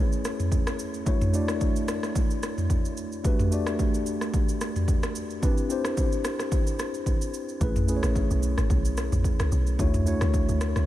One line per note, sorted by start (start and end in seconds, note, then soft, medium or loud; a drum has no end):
0.00 1.06 A3 medium
0.00 1.08 C#4 medium
0.00 1.07 E4 medium
0.00 1.08 G#4 medium
0.00 1.08 B4 medium
0.00 1.08 C#5 medium
0.12 shaker medium
0.25 cross-stick medium
0.25 shaker medium
0.40 mid tom medium
0.40 shaker medium
0.52 kick medium
0.52 shaker medium
0.67 cross-stick loud
0.67 shaker medium
0.79 shaker medium
0.94 shaker soft
1.06 1.28 A3 medium
1.06 1.29 D4 medium
1.06 1.29 E4 medium
1.06 1.29 F#4 medium
1.06 1.30 C#5 medium
1.06 kick loud
1.06 shaker medium
1.21 mid tom loud
1.21 shaker medium
1.33 2.21 A3 medium
1.33 2.21 D4 medium
1.33 2.22 E4 medium
1.33 2.22 F#4 medium
1.33 2.22 D5 medium
1.33 shaker medium
1.48 cross-stick loud
1.48 shaker medium
1.61 kick medium
1.61 shaker medium
1.76 shaker medium
1.88 cross-stick loud
1.88 shaker medium
2.03 cross-stick medium
2.03 shaker medium
2.15 kick loud
2.15 shaker medium
2.30 shaker medium
2.43 cross-stick medium
2.43 shaker medium
2.58 mid tom medium
2.58 shaker medium
2.70 kick medium
2.70 shaker medium
2.85 shaker medium
2.97 shaker medium
3.12 shaker medium
3.24 3.47 A3 medium
3.24 3.47 D4 medium
3.24 3.47 F#4 medium
3.24 3.48 G4 medium
3.24 3.48 B4 medium
3.24 kick loud
3.24 shaker medium
3.39 mid tom loud
3.39 shaker medium
3.51 4.39 A3 medium
3.51 4.40 D4 medium
3.51 4.40 F#4 medium
3.51 4.40 G4 medium
3.51 4.41 D5 medium
3.51 shaker loud
3.67 cross-stick loud
3.67 shaker medium
3.79 kick medium
3.79 shaker medium
3.94 shaker medium
4.06 shaker medium
4.21 cross-stick medium
4.21 shaker medium
4.34 kick loud
4.34 shaker medium
4.49 shaker medium
4.61 cross-stick medium
4.61 shaker medium
4.76 mid tom medium
4.76 shaker medium
4.88 kick medium
4.88 shaker medium
5.03 cross-stick loud
5.03 shaker medium
5.15 shaker medium
5.30 shaker soft
5.42 5.65 C4 medium
5.42 5.65 D4 medium
5.42 5.65 E4 medium
5.42 5.66 G4 medium
5.42 5.66 B4 medium
5.42 kick loud
5.42 shaker medium
5.58 shaker medium
5.69 6.57 C4 medium
5.69 6.58 D4 medium
5.69 6.58 E4 medium
5.69 6.58 G4 medium
5.69 6.59 C5 medium
5.69 shaker loud
5.85 cross-stick loud
5.85 shaker medium
5.97 kick medium
5.97 shaker medium
6.12 shaker medium
6.24 cross-stick loud
6.24 shaker medium
6.39 cross-stick medium
6.39 shaker medium
6.52 kick loud
6.52 shaker medium
6.67 shaker medium
6.79 cross-stick medium
6.79 shaker medium
6.94 shaker medium
7.06 kick medium
7.06 shaker medium
7.21 shaker medium
7.34 shaker medium
7.49 shaker medium
7.60 8.01 A1 loud
7.60 7.83 A3 medium
7.60 7.83 C#4 medium
7.60 7.84 E4 medium
7.60 7.84 G#4 medium
7.60 7.84 B4 loud
7.60 kick loud
7.60 shaker medium
7.76 mid tom loud
7.76 shaker medium
7.87 8.76 A3 medium
7.87 8.76 C#4 medium
7.87 8.76 E4 medium
7.87 8.77 G#4 medium
7.87 7.96 B4 medium
7.87 shaker loud
7.96 8.80 C#5 medium
8.03 8.29 A1 medium
8.03 cross-stick loud
8.03 shaker medium
8.16 kick medium
8.16 shaker medium
8.31 8.56 B1 medium
8.31 shaker medium
8.43 shaker medium
8.58 8.69 G#1 medium
8.58 cross-stick medium
8.58 shaker medium
8.70 9.10 B1 loud
8.70 kick loud
8.70 shaker medium
8.85 shaker medium
8.97 cross-stick medium
8.97 shaker medium
9.12 9.24 A1 loud
9.12 mid tom medium
9.12 shaker soft
9.24 kick medium
9.24 shaker medium
9.40 9.51 C#2 medium
9.40 cross-stick loud
9.40 shaker medium
9.52 9.78 B1 loud
9.52 shaker medium
9.67 shaker medium
9.78 10.19 D2 loud
9.78 10.01 A3 medium
9.78 10.01 D4 medium
9.78 10.02 E4 medium
9.78 10.02 F#4 medium
9.78 10.02 C#5 medium
9.78 kick loud
9.78 shaker medium
9.94 mid tom loud
9.94 shaker medium
10.06 10.86 A3 medium
10.06 10.86 D4 medium
10.06 10.86 E4 medium
10.06 10.86 F#4 medium
10.06 10.86 C#5 medium
10.06 shaker loud
10.21 10.47 D2 loud
10.21 cross-stick loud
10.21 shaker medium
10.34 kick medium
10.34 shaker medium
10.49 10.74 D2 medium
10.49 shaker medium
10.61 cross-stick loud
10.61 shaker medium
10.76 10.86 C#2 medium
10.76 cross-stick medium
10.76 shaker medium